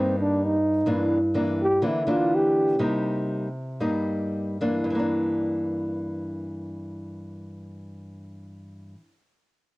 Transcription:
0.00 0.84 G2 medium
0.00 0.56 G3 soft
0.00 0.56 A#3 soft
0.00 0.18 C4 medium
0.00 0.56 D#4 medium
0.20 0.47 D4 medium
0.45 0.90 D#4 medium
0.86 1.79 G2 medium
0.86 1.17 E3 medium
0.86 1.17 A#3 soft
0.86 1.17 D4 medium
1.34 1.65 E3 soft
1.34 1.65 A#3 soft
1.34 1.65 D4 medium
1.63 1.88 G4 medium
1.82 2.77 D3 medium
1.82 2.02 E3 soft
1.82 2.02 A#3 soft
1.82 2.03 D4 medium
1.87 2.12 E4 medium
2.07 2.76 E3 medium
2.07 2.76 A#3 medium
2.07 2.76 D4 medium
2.07 2.36 F4 medium
2.35 2.82 G4 medium
2.79 3.78 C3 medium
2.79 3.47 G3 medium
2.79 3.47 A#3 soft
2.79 3.47 D#4 medium
3.80 4.83 G2 medium
3.80 4.56 G3 soft
3.80 4.57 A#3 soft
3.80 4.57 D#4 medium
4.61 4.89 E3 soft
4.61 4.94 A#3 medium
4.61 4.98 D4 medium
4.84 8.94 G2 medium
4.90 9.00 E3 medium
4.95 9.05 A#3 medium
4.99 9.09 D4 medium

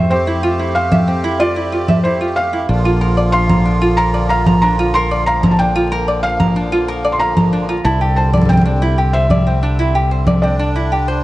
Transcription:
0.00 2.66 F2 medium
0.00 2.65 A3 medium
0.00 2.65 C4 medium
0.10 0.25 C4 medium
0.10 2.66 G4 medium
0.10 0.77 C5 medium
0.27 0.42 E4 medium
0.43 0.58 F4 medium
0.59 0.74 E4 medium
0.75 0.91 C5 medium
0.75 1.42 F5 medium
0.92 1.06 E5 medium
0.92 low conga medium
1.08 1.22 C4 medium
1.24 1.38 E4 medium
1.40 1.54 F4 medium
1.40 2.06 D5 medium
1.56 1.71 E4 medium
1.72 1.87 F4 medium
1.88 1.98 E5 medium
1.88 low conga medium
2.04 2.19 E4 medium
2.04 2.37 C5 medium
2.21 2.36 F4 medium
2.36 3.36 F5 medium
2.36 2.51 F5 medium
2.53 2.67 E4 medium
2.69 7.82 A#1 medium
2.69 11.24 D3 medium
2.69 7.81 F3 medium
2.69 7.81 A#3 medium
2.69 2.83 D4 medium
2.69 5.25 F4 medium
2.85 3.00 F4 medium
3.01 3.16 A#4 medium
3.17 3.32 D5 medium
3.32 3.49 F5 medium
3.32 3.99 C6 medium
3.49 3.64 A#5 medium
3.49 low conga medium
3.66 3.80 D4 medium
3.82 3.96 F4 medium
3.97 4.12 A#4 medium
3.97 4.28 A#5 medium
4.14 4.29 D5 medium
4.29 4.46 F5 medium
4.29 4.60 A#5 medium
4.46 4.61 A#5 medium
4.46 low conga medium
4.62 4.77 D4 medium
4.62 4.95 A#5 medium
4.79 4.93 F4 medium
4.94 5.09 A#4 medium
4.94 5.28 C6 medium
5.11 5.26 D5 medium
5.26 5.43 F5 medium
5.26 5.53 A#5 medium
5.43 5.58 A#5 medium
5.43 low conga medium
5.51 5.59 A5 medium
5.59 5.74 D4 medium
5.59 6.25 G5 medium
5.76 5.90 F4 medium
5.92 6.06 A#4 medium
6.08 6.22 D5 medium
6.23 7.16 F5 medium
6.23 6.39 F5 medium
6.40 6.54 A#5 medium
6.40 low conga medium
6.56 6.71 D4 medium
6.72 6.87 F4 medium
6.88 7.03 A#4 medium
7.05 7.19 D5 medium
7.12 7.20 C6 medium
7.19 7.36 F5 medium
7.19 7.86 A#5 medium
7.37 7.51 A#5 medium
7.37 low conga medium
7.53 7.67 D4 medium
7.69 7.83 F4 medium
7.84 11.24 C2 medium
7.84 11.24 G3 medium
7.84 10.41 C4 medium
7.84 8.00 E4 medium
7.84 8.15 A5 medium
8.01 8.16 G4 medium
8.16 8.33 C5 medium
8.16 8.50 A5 medium
8.33 8.48 D5 medium
8.33 low conga soft
8.38 low conga soft
8.42 low conga soft
8.46 8.64 C4 medium
8.46 9.16 G5 medium
8.46 low conga soft
8.49 low conga soft
8.53 low conga soft
8.57 low conga medium
8.62 low conga medium
8.66 8.80 D4 medium
8.82 8.96 E4 medium
8.98 9.13 G4 medium
9.13 9.29 C5 medium
9.13 10.47 E5 medium
9.30 9.45 D5 medium
9.30 low conga medium
9.47 9.61 C4 medium
9.63 9.77 D4 medium
9.79 9.93 E4 medium
9.95 10.09 G4 medium
10.11 10.26 C5 medium
10.27 10.42 D5 medium
10.27 low conga medium
10.42 10.58 C4 medium
10.42 11.24 D4 medium
10.42 11.24 D5 medium
10.59 10.74 D4 medium
10.76 10.90 E4 medium
10.92 11.06 G4 medium
11.08 11.23 C5 medium

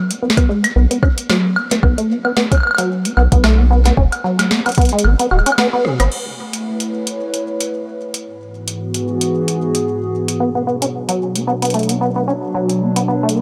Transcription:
0.00 0.12 F#3 medium
0.11 0.18 B3 medium
0.11 closed hi-hat medium
0.22 0.28 B3 medium
0.30 snare loud
0.37 0.48 B3 medium
0.37 kick loud
0.37 closed hi-hat soft
0.37 high woodblock soft
0.49 0.66 G#3 medium
0.64 0.72 B3 loud
0.64 closed hi-hat medium
0.64 high woodblock medium
0.76 0.87 B1 loud
0.76 0.85 B3 medium
0.91 0.98 B3 medium
0.91 closed hi-hat soft
1.03 1.08 C#4 medium
1.03 kick loud
1.03 high woodblock medium
1.18 closed hi-hat medium
1.30 1.58 F#3 medium
1.30 snare loud
1.30 high woodblock medium
1.56 1.66 B3 medium
1.56 high woodblock medium
1.71 1.76 B3 medium
1.71 snare medium
1.71 closed hi-hat medium
1.83 1.94 B1 loud
1.83 1.97 B3 medium
1.83 kick loud
1.83 high woodblock medium
1.98 2.11 A3 medium
1.98 closed hi-hat soft
2.10 2.19 B3 loud
2.25 2.32 B3 medium
2.25 high woodblock medium
2.37 2.46 B3 medium
2.37 snare loud
2.52 2.56 C#4 medium
2.52 kick loud
2.52 closed hi-hat soft
2.52 high woodblock soft
2.55 high woodblock soft
2.58 high woodblock soft
2.60 high woodblock soft
2.63 high woodblock medium
2.67 high woodblock medium
2.71 high woodblock medium
2.75 3.07 F#3 medium
2.75 closed hi-hat medium
2.75 high woodblock medium
2.78 high woodblock medium
3.05 3.13 B3 medium
3.05 closed hi-hat medium
3.17 3.28 B1 medium
3.17 3.23 B3 medium
3.17 high woodblock medium
3.32 3.92 B1 medium
3.32 3.43 B3 medium
3.32 kick loud
3.32 closed hi-hat medium
3.44 3.60 A3 medium
3.44 snare loud
3.44 high woodblock medium
3.59 3.66 B3 loud
3.71 3.80 B3 medium
3.85 3.93 B3 medium
3.85 snare medium
3.85 closed hi-hat medium
3.97 4.08 E1 loud
3.97 4.03 C#4 medium
3.97 kick medium
4.12 closed hi-hat soft
4.12 high woodblock medium
4.24 4.52 F#3 medium
4.39 snare medium
4.39 closed hi-hat medium
4.39 high woodblock medium
4.51 4.60 B3 medium
4.51 snare loud
4.66 4.70 B3 medium
4.66 closed hi-hat soft
4.66 high woodblock medium
4.69 closed hi-hat soft
4.72 closed hi-hat soft
4.75 4.92 B3 medium
4.75 kick loud
4.75 closed hi-hat soft
4.78 closed hi-hat soft
4.81 closed hi-hat soft
4.85 closed hi-hat soft
4.89 5.06 G#3 medium
4.89 closed hi-hat soft
4.99 closed hi-hat medium
5.04 5.15 G#1 loud
5.04 5.14 B3 loud
5.04 high woodblock medium
5.19 5.27 B3 medium
5.19 closed hi-hat medium
5.31 5.42 D1 loud
5.31 5.37 F#4 medium
5.31 high woodblock soft
5.39 high woodblock soft
5.46 5.51 C#4 medium
5.46 closed hi-hat medium
5.46 high woodblock medium
5.52 high woodblock medium
5.58 5.68 B3 medium
5.58 snare loud
5.58 high woodblock medium
5.73 5.86 B3 medium
5.85 5.99 B2 medium
5.85 cross-stick medium
6.00 6.08 G#1 medium
6.00 6.04 B3 loud
6.00 cross-stick medium
6.00 closed hi-hat medium
6.00 high woodblock medium
6.12 8.26 A3 medium
6.12 crash medium
6.36 9.12 E4 medium
6.36 9.12 B4 medium
6.43 9.12 C#5 medium
6.53 closed hi-hat medium
6.80 closed hi-hat medium
7.07 closed hi-hat medium
7.34 closed hi-hat soft
7.61 closed hi-hat medium
8.14 closed hi-hat medium
8.26 10.40 G#2 medium
8.38 10.40 E3 medium
8.44 11.85 B3 medium
8.44 11.89 F#4 medium
8.57 11.72 G#4 medium
8.68 closed hi-hat medium
8.94 closed hi-hat soft
9.21 closed hi-hat medium
9.48 closed hi-hat medium
9.75 closed hi-hat medium
10.28 closed hi-hat medium
10.40 13.42 B2 medium
10.40 10.50 B3 loud
10.55 10.63 B3 medium
10.55 13.42 D4 medium
10.67 13.42 F#3 medium
10.67 10.76 B3 medium
10.82 10.86 C#4 medium
10.82 closed hi-hat medium
11.09 11.37 F#3 medium
11.09 closed hi-hat medium
11.36 11.43 B3 medium
11.36 closed hi-hat medium
11.47 11.53 B3 medium
11.62 11.73 B3 medium
11.62 closed hi-hat soft
11.65 closed hi-hat soft
11.70 closed hi-hat soft
11.74 11.91 A3 medium
11.74 closed hi-hat soft
11.79 closed hi-hat soft
11.83 closed hi-hat soft
11.89 11.97 B3 medium
11.89 closed hi-hat medium
12.01 12.10 B3 medium
12.16 12.23 B3 medium
12.28 12.33 C#4 medium
12.54 12.83 F#3 medium
12.69 closed hi-hat soft
12.81 12.91 B3 medium
12.96 13.01 B3 medium
12.96 closed hi-hat medium
13.08 13.22 B3 medium
13.23 13.36 A3 medium
13.29 closed hi-hat soft
13.35 13.42 B3 loud

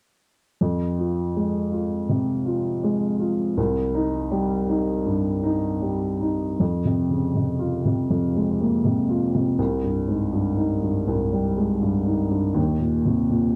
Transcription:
0.61 2.06 F2 soft
0.99 1.58 F4 soft
1.36 1.95 G#3 soft
1.72 2.31 F4 soft
2.09 2.69 C3 soft
2.46 3.05 F4 soft
2.83 3.43 G#3 soft
3.20 3.57 F4 soft
3.57 5.02 C2 soft
3.94 4.53 D#4 soft
4.31 4.91 G3 soft
4.69 5.29 D#4 soft
5.06 5.67 G2 soft
5.43 6.05 D#4 soft
5.82 6.44 G3 soft
6.21 6.60 D#4 soft
6.60 8.06 F2 soft
6.85 7.25 C3 soft
7.10 7.35 C#3 soft
7.35 7.75 C3 soft
7.59 8.00 F4 soft
7.85 8.25 C3 soft
8.10 9.55 F2 soft
8.35 8.75 G#3 soft
8.61 8.85 A#3 soft
8.85 9.24 C3 soft
9.09 9.49 F4 soft
9.35 9.59 C3 soft
9.58 11.04 C2 soft
9.83 10.23 G2 soft
10.08 10.33 G#2 soft
10.32 10.73 G2 soft
10.57 10.97 D#4 soft
10.82 11.22 G2 soft
11.07 12.52 C2 soft
11.32 11.72 G3 soft
11.57 11.82 G#3 soft
11.81 12.22 G2 soft
12.05 12.46 D#4 soft
12.30 12.56 G2 soft
12.54 13.55 D#2 soft
12.80 13.21 A#2 soft
13.05 13.31 C3 soft
13.30 13.55 A#2 soft

